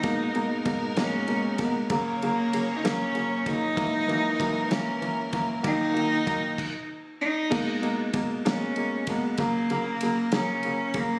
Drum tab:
CC |------|------|------|---x--|
RD |xxxxxx|xxxxxx|xxxxxx|xxx---|
SD |---o--|---o--|---o--|------|
BD |o-o--o|o----o|o-o--o|o-oo--|

CC |x-----|------|
RD |-xxxxx|xxxxxx|
SD |---o--|---o--|
BD |o-o--o|o----o|